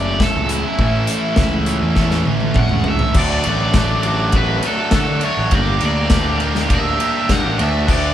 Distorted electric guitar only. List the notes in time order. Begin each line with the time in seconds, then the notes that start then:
Already playing: F#3 A3 C#4
0.78 E3 A3 C#4
1.96 E3 A3 C#4
3.16 F#3 A3 D4 F#4
3.44 F#3 A3 D4 F#4
3.76 F#3 A3 D4 F#4
4.05 F#3 A3 D4 F#4
4.34 F#3 A3 D4 F#4
4.64 F#3 A3 D4 F#4
4.95 F#3 A3 D4 F#4
5.22 F#3 A3 D4 F#4
5.53 A#3 D4 G4
5.83 A#3 D4 G4
6.12 A#3 D4 G4
6.41 A#3 D4 G4
6.68 A#3 D4 G4
6.99 A#3 D4 G4
7.29 A#3 D4 G4
7.59 A3 D4 F#4
7.88 A3 D4 F#4